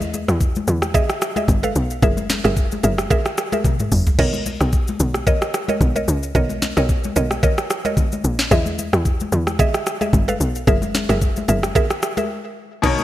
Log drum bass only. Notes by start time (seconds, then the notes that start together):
Already playing: E2
0.28 E2
0.68 E2
1.48 G1
1.76 B1
2.02 F#1
2.45 F#1
2.84 F#1
3.92 F#1
4.19 B1
4.61 B1
5.00 B1
5.81 B1
6.08 C#2
6.35 B1
6.77 B1
7.16 B1
8.24 A#1
8.51 E2
8.93 E2
9.32 E2
10.13 G1
10.40 B1
10.67 F#1
11.09 F#1
11.49 F#1
12.84 B1